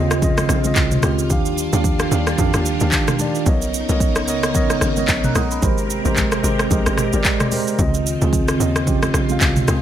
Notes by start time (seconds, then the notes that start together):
Already playing: D#2 C#3 D#3 C4 F4 C5 D#5
0.11 cross-stick, shaker
0.21 C#3 C4 F4 D#5, kick, low conga, shaker
0.38 cross-stick, high conga, shaker
0.49 A#1, cross-stick, shaker
0.64 C#3 C4 F4 D#5, high conga, shaker
0.76 C2, kick, clap, shaker
0.91 mid tom, high conga, shaker
1.02 C#2 C#3 C4 F4 G4, cross-stick, high conga, shaker
1.19 shaker
1.29 D#2 D#3 G3 D4 G4 F5, kick, low conga, shaker
1.46 shaker
1.58 shaker
1.72 D#2 D#3 D4 G4 F5, high conga, shaker
1.84 kick, low conga, shaker
1.99 cross-stick, shaker
2.10 D#2 D#3 D4 G4 F5, shaker
2.27 cross-stick, shaker
2.37 F2 D#3 D4 G4 F5, kick, low conga, shaker
2.54 D#2, cross-stick, high conga, shaker
2.66 shaker
2.80 D2 D#3 D4 G4 F5, high conga, shaker
2.92 kick, clap, shaker
3.08 cross-stick, mid tom, high conga, shaker
3.19 D#3 D4 G4 D5, high conga, shaker
3.35 shaker
3.45 B1 C#3 B3 D#4 A#4 C#5 D#5, kick, low conga, shaker
3.62 shaker
3.74 shaker
3.88 B1 B3 A#4 C#5 D#5, high conga, shaker
4.00 kick, low conga, shaker
4.16 cross-stick, shaker
4.27 C#2 B3 A#4 C#5 D#5, shaker
4.43 cross-stick, shaker
4.54 B3 A#4 C#5 D#5, kick, low conga, shaker
4.70 cross-stick, high conga, shaker
4.81 G#1, cross-stick, shaker
4.96 B3 A#4 C#5 D#5, high conga, shaker
5.08 A#1, kick, clap, shaker
5.24 A#5 F#6, mid tom, high conga, shaker
5.35 B1 F#5 D#6, cross-stick, high conga, shaker
5.51 D#5 B5, shaker
5.61 G#1 C3 G#3 G4 A#4 C5, kick, low conga, shaker
5.78 shaker
5.90 shaker
6.04 G#1 G#3 G4 A#4 C5, high conga, shaker
6.16 kick, clap, low conga, shaker
6.32 cross-stick, shaker
6.43 G#1 G#3 G4 A#4 C5, shaker
6.59 cross-stick, shaker
6.70 A#1 G#3 G4 A#4 D#5, kick, low conga, shaker
6.86 G#1, cross-stick, high conga, shaker
6.97 cross-stick, mid tom, shaker
7.12 G1 G#3 G4 A#4 D5, high conga, shaker
7.24 kick, clap, shaker
7.40 cross-stick, mid tom, high conga, shaker
7.51 G#3 G4 A#4 C5, open hi-hat, high conga, shaker
7.68 shaker
7.78 C#2 C#3 D#3 C4 F4 D#5, kick, low conga, shaker
7.94 shaker
8.07 shaker
8.20 C#2 C#3 C4 F4 G#4, high conga, shaker
8.33 kick, low conga, shaker
8.48 cross-stick, shaker
8.59 D#2 C#3 C4 F4 D#5, shaker
8.76 cross-stick, shaker
8.86 C#3 C4 F4 G4, kick, low conga, shaker
9.03 cross-stick, high conga, shaker
9.14 A#1, cross-stick, shaker
9.29 C#3 C4 F4 F5, high conga, shaker
9.41 C2, kick, clap, shaker
9.56 mid tom, high conga, shaker
9.67 C#2 C#3 C4 F4 G#4, cross-stick, high conga, shaker